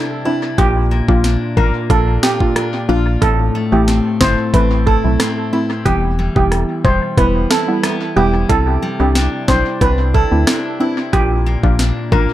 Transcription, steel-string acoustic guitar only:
0.00 0.58 C3 medium
0.00 0.65 G3 medium
0.00 1.24 D4 medium
0.00 0.24 E4 medium
0.25 0.65 E4 medium
0.58 3.22 A#2 medium
0.91 1.56 A#3 medium
1.24 1.89 D4 medium
1.57 3.29 A#3 medium
1.90 2.55 D4 medium
2.23 2.88 F4 medium
2.56 3.29 D4 medium
2.89 3.29 F4 medium
3.22 5.86 A2 medium
3.55 4.20 A3 medium
3.88 4.53 C4 medium
4.21 5.93 A3 medium
4.54 5.19 C4 medium
4.87 5.52 E4 medium
5.20 5.93 C4 medium
5.53 7.50 E4 medium
5.86 9.18 E3 medium
6.19 6.84 G3 medium
6.85 8.82 G3 medium
7.18 7.82 B3 medium
7.51 8.16 E4 medium
7.84 8.56 B3 medium
8.17 9.18 E4 medium
8.50 11.13 C3 medium
8.82 9.47 G3 medium
9.15 9.81 D4 medium
9.48 11.20 G3 medium
9.81 10.47 D4 medium
10.14 10.79 E4 medium
10.47 11.79 D4 medium
10.80 11.20 E4 medium
11.13 12.33 A#2 medium
11.46 12.11 A#3 medium
11.79 12.33 D4 medium
12.12 12.33 A#3 medium

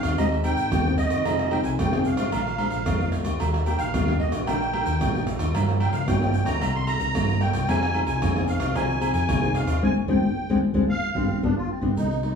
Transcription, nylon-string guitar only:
0.00 0.15 D#3 medium
0.00 0.14 C4 medium
0.00 0.14 D#4 medium
0.00 0.15 G4 medium
0.18 0.69 G#3 medium
0.18 0.34 C4 medium
0.18 0.34 D#4 medium
0.18 0.34 G4 medium
0.44 0.80 C4 medium
0.44 0.81 D#4 medium
0.44 0.81 G4 medium
0.72 1.23 D#3 medium
0.86 1.21 C4 medium
0.86 1.22 D#4 medium
0.86 1.22 G4 medium
1.26 1.77 F3 medium
1.26 1.48 C4 medium
1.26 1.48 D#4 medium
1.26 1.49 G#4 medium
1.52 1.77 C4 medium
1.52 1.77 D#4 medium
1.52 1.77 G#4 medium
1.80 2.30 C3 medium
1.94 2.16 C4 medium
1.94 2.16 D#4 medium
1.94 2.16 G#4 medium
2.18 2.54 F3 medium
2.18 2.55 G#3 medium
2.18 2.55 D4 medium
2.33 2.84 A#2 medium
2.59 2.84 F3 medium
2.59 2.85 G#3 medium
2.59 2.85 D4 medium
2.87 3.37 F2 medium
3.01 3.23 F3 medium
3.01 3.23 G#3 medium
3.01 3.23 D4 medium
3.25 3.62 A#3 medium
3.25 3.62 D4 medium
3.25 3.62 G4 medium
3.40 3.91 D#3 medium
3.66 4.02 A#3 medium
3.66 4.02 D4 medium
3.66 4.02 G4 medium
3.94 4.44 A#2 medium
4.08 4.43 A#3 medium
4.08 4.43 D4 medium
4.08 4.44 G4 medium
4.47 4.98 D#3 medium
4.47 4.63 A#3 medium
4.47 4.63 D4 medium
4.47 4.63 G4 medium
4.73 5.09 A#3 medium
4.73 5.09 D4 medium
4.73 5.10 G4 medium
5.01 5.51 A#2 medium
5.15 5.50 A#3 medium
5.15 5.50 D4 medium
5.15 5.51 G4 medium
5.54 6.05 G2 medium
5.54 5.63 F3 medium
5.54 5.64 A#3 medium
5.54 5.64 C#4 medium
5.69 6.04 F3 medium
5.69 6.04 A#3 medium
5.69 6.04 C#4 medium
6.08 6.59 G2 medium
6.08 6.17 F3 medium
6.08 6.17 A#3 medium
6.08 6.17 C#4 medium
6.22 6.57 F3 medium
6.22 6.58 A#3 medium
6.22 6.58 C#4 medium
6.61 7.12 C3 medium
6.61 6.96 G3 medium
6.61 6.96 A#3 medium
6.61 6.96 E4 medium
7.15 7.66 G2 medium
7.15 7.37 G3 medium
7.15 7.37 A#3 medium
7.15 7.38 E4 medium
7.41 7.58 G3 medium
7.41 7.58 A#3 medium
7.41 7.59 E4 medium
7.68 8.19 F3 medium
7.68 7.84 C4 medium
7.68 7.84 D#4 medium
7.68 7.84 G#4 medium
7.94 8.30 C4 medium
7.94 8.30 D#4 medium
7.94 8.31 G#4 medium
8.22 8.72 C3 medium
8.35 8.71 C4 medium
8.35 8.71 D#4 medium
8.35 8.71 G#4 medium
8.75 9.26 F3 medium
8.75 8.98 C4 medium
8.75 8.98 D#4 medium
8.75 8.98 G#4 medium
9.00 9.37 C4 medium
9.00 9.37 D#4 medium
9.00 9.37 G#4 medium
9.28 9.79 C3 medium
9.42 9.78 C4 medium
9.42 9.78 D#4 medium
9.42 9.78 G#4 medium
9.82 9.91 G#3 medium
9.82 9.91 C4 loud
9.82 9.91 D4 medium
10.08 10.17 G#3 loud
10.08 10.17 C4 loud
10.08 10.17 D4 loud
10.50 10.58 G#3 loud
10.50 10.58 C4 loud
10.50 10.58 D4 loud
10.74 10.83 G#3 loud
10.74 10.84 C4 loud
10.74 10.83 D4 loud
11.15 11.24 G3 loud
11.15 11.24 B3 loud
11.15 11.24 D4 medium
11.43 11.52 G3 loud
11.43 11.52 B3 loud
11.43 11.52 D4 loud
11.81 11.91 G3 medium
11.81 11.91 B3 medium
11.81 11.91 D4 loud
11.97 12.35 C3 soft
11.97 12.12 G3 medium
11.97 12.13 A#3 soft
11.97 12.13 D#4 medium
12.23 12.35 G3 medium
12.23 12.35 A#3 soft
12.23 12.35 D#4 medium

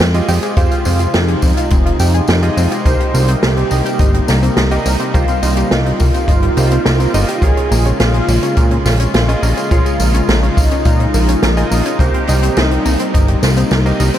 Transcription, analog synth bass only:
0.00 0.21 F2 medium
0.28 0.39 F2 medium
0.57 0.68 F2 loud
0.86 1.07 F2 medium
1.14 1.36 F2 medium
1.43 1.53 F2 medium
1.72 1.93 F1 medium
2.00 2.21 F2 medium
2.28 2.50 F2 loud
2.57 2.68 F2 medium
2.85 2.96 C2 loud
3.14 3.36 C2 medium
3.43 3.64 C2 medium
3.71 3.82 C2 medium
4.00 4.21 G1 medium
4.29 4.50 C2 loud
4.57 4.79 C2 medium
4.86 4.96 C2 medium
5.14 5.25 C2 loud
5.43 5.64 C2 medium
5.71 5.93 C2 medium
6.00 6.11 C2 medium
6.28 6.50 G1 medium
6.57 6.79 C2 loud
6.86 7.07 C2 medium
7.14 7.25 G1 medium
7.42 7.53 A#1 medium
7.71 7.93 A#1 medium
8.00 8.21 A#1 medium
8.28 8.39 A#1 medium
8.57 8.78 A#2 medium
8.86 9.07 A#1 loud
9.14 9.36 A#1 medium
9.43 9.53 A#1 medium
9.71 9.82 A#1 loud
10.00 10.21 A#1 medium
10.28 10.50 A#1 medium
10.57 10.68 A#1 medium
10.85 11.07 A#2 medium
11.14 11.36 A#1 medium
11.43 11.64 A#1 medium
11.71 11.82 A#1 medium
11.99 12.10 C2 loud
12.28 12.50 C2 medium
12.57 12.79 C2 medium
12.86 12.96 C2 medium
13.14 13.36 G1 medium
13.43 13.64 C2 medium
13.71 13.93 C2 medium
14.00 14.11 C2 medium

